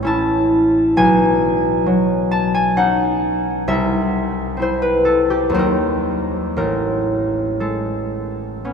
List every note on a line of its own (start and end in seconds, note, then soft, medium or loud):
0.00 1.00 A1 medium
0.00 1.01 G#3 medium
0.00 0.28 A3 medium
0.00 2.76 C#4 medium
0.00 2.05 C#5 medium
0.05 1.01 E4 medium
0.05 1.01 A5 loud
0.97 3.70 B1 medium
0.97 2.53 G#5 loud
1.86 3.70 F#3 medium
2.31 2.69 A5 loud
2.54 2.92 G#5 medium
2.77 3.71 C#4 medium
2.77 3.71 D#4 medium
2.77 3.71 F#5 loud
3.68 5.58 C2 medium
3.68 5.58 E5 medium
4.57 5.53 C4 soft
4.57 5.58 E4 soft
4.62 6.61 C5 medium
4.82 5.22 B4 medium
5.05 5.46 A4 medium
5.30 5.71 G4 medium
5.50 6.61 D#2 medium
5.50 6.61 F#3 soft
5.54 6.61 C4 soft
5.54 5.60 D#4 soft
5.59 6.56 A#4 medium
6.57 8.73 A1 soft
6.57 8.73 A#4 medium
7.60 8.73 G#3 soft
7.60 8.73 A4 soft
8.65 8.73 B3 soft
8.65 8.73 C#4 soft